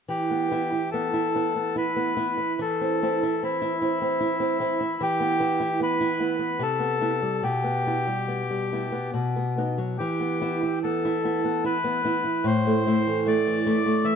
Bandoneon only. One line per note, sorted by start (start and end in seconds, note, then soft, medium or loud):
0.09 0.90 G4 soft
0.91 1.76 A4 medium
1.78 2.60 B4 medium
2.61 3.43 A4 medium
3.44 5.02 E4 medium
5.03 5.80 G4 medium
5.83 6.62 B4 medium
6.62 7.43 A4 medium
7.44 9.11 G4 medium
9.98 10.79 G4 medium
10.83 11.64 A4 medium
11.65 12.46 B4 medium
12.47 13.27 C5 medium
13.28 14.06 D5 medium
14.05 14.16 E5 medium